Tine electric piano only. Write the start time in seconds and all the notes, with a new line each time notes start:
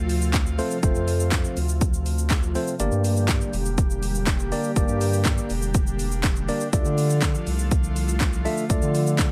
0.58 A3 C4 F4 A4 C5
0.83 A3 C4 F4 A4 C5
2.55 A3 C4 F4 A4 C5
2.80 A#3 D4 G4 A#4 D5
4.52 A#3 D4 G4 A#4 D5
4.76 A#3 D4 G4 A#4 D5
6.48 A#3 D4 G4 A#4 D5
6.73 A3 D4 F4 A4 D5
8.45 A3 D4 F4 A4 E5
8.69 A3 D4 F4 A4 D5